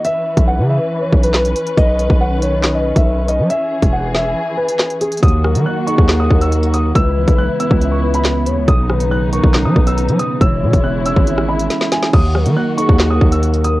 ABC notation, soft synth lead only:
X:1
M:4/4
L:1/8
Q:1/4=139
K:Ebphr
V:1 name="Soft synth lead"
z8 | z8 | z8 | z B2 A2 B3 |
c4- c c2 d | z =B2 _B2 =B3 | ^c4- c =e3 | z B2 A2 B3 |]